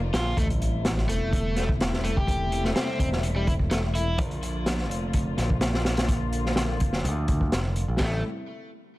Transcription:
Already playing: string section D3 F3 A#3 F4
0.14 picked electric bass A#1, overdriven electric guitar F4, snare, closed hi-hat
0.37 picked electric bass A1, string section C3 G3 A3 E4, overdriven electric guitar A3, kick, closed hi-hat, sub drop
0.50 closed hi-hat
0.62 closed hi-hat
0.85 snare, closed hi-hat
0.97 snare
1.09 picked electric bass E1, overdriven electric guitar A3, closed hi-hat
1.33 kick, closed hi-hat
1.56 overdriven electric guitar A3, snare, closed hi-hat
1.69 kick
1.80 snare, closed hi-hat
1.93 snare
2.04 overdriven electric guitar A3, closed hi-hat
2.17 overdriven electric guitar G4, kick
2.27 kick, closed hi-hat
2.52 closed hi-hat
2.65 overdriven electric guitar A3, snare
2.76 overdriven electric guitar C4, snare, closed hi-hat
2.99 picked electric bass E1, overdriven electric guitar C4, kick, closed hi-hat
3.13 snare
3.23 closed hi-hat
3.36 overdriven electric guitar G3
3.47 overdriven electric guitar E4, kick, closed hi-hat
3.59 kick
3.71 overdriven electric guitar A3, snare, closed hi-hat
3.95 overdriven electric guitar E4, closed hi-hat
4.18 picked electric bass A#1, string section D3 F3 A#3 F4, kick, closed hi-hat
4.31 closed hi-hat
4.43 closed hi-hat
4.66 snare, closed hi-hat
4.79 snare
4.90 picked electric bass F1, closed hi-hat
5.13 kick, closed hi-hat
5.37 picked electric bass A#1, snare, closed hi-hat
5.50 kick
5.61 snare, closed hi-hat
5.74 snare
5.85 snare, closed hi-hat
5.97 snare, closed hi-hat
6.08 kick, closed hi-hat
6.33 closed hi-hat
6.46 snare
6.56 snare, closed hi-hat
6.80 picked electric bass F1, kick, closed hi-hat
6.93 snare
7.04 picked electric bass D2, closed hi-hat
7.28 kick, closed hi-hat
7.41 kick
7.52 picked electric bass F1, snare, closed hi-hat
7.76 closed hi-hat
7.88 picked electric bass A#1
7.99 picked electric bass A1, string section C3 G3 A3 E4, overdriven electric guitar A3, kick, snare, crash

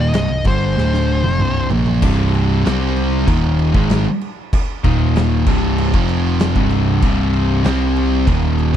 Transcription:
Already playing: picked electric bass D#1, distorted electric guitar D#2 A#2 D#3
0.01 lead electric guitar D#5
0.14 picked electric bass C1, distorted electric guitar C2 G2, snare, ride
0.29 picked electric bass C1, distorted electric guitar C2 G2
0.45 picked electric bass G1, distorted electric guitar G2 D3 G3, lead electric guitar C5, kick, ride
0.76 picked electric bass D1, distorted electric guitar D2 A2 D3, snare
0.94 snare
1.24 picked electric bass F1, distorted electric guitar F2 C3, high tom
1.39 picked electric bass C1, distorted electric guitar C2 G2 C3, mid tom
1.71 picked electric bass A#1, distorted electric guitar A#2 F3 A#3, floor tom
1.86 floor tom
2.02 picked electric bass C1, distorted electric guitar C2 G2 C3, kick, crash
2.34 crash
2.64 picked electric bass C2, distorted electric guitar C3 G3 C4, snare, crash
2.97 crash
3.27 picked electric bass D#1, distorted electric guitar D#2 A#2 D#3, kick, crash
3.59 crash
3.73 picked electric bass G#1, distorted electric guitar G#2 D#3 G#3, kick
3.90 snare, crash
4.21 crash
4.53 kick, crash
4.84 picked electric bass D#1, distorted electric guitar D#2 A#2 D#3, kick, crash
5.16 snare, crash
5.46 picked electric bass C1, distorted electric guitar C2 G2 C3, kick, crash
5.78 crash
5.94 picked electric bass F1, distorted electric guitar F2 C3 F3, kick
6.09 crash
6.39 snare, crash
6.55 picked electric bass C1, distorted electric guitar C2 G2 C3, kick
6.70 crash
7.02 picked electric bass C1, distorted electric guitar C2 G2 C3, kick, crash
7.33 crash
7.64 picked electric bass C2, distorted electric guitar C3 G3 C4, snare, crash
7.96 crash
8.27 picked electric bass D#1, distorted electric guitar D#2 A#2 D#3, kick, crash
8.59 crash
8.73 overdriven electric guitar G#2

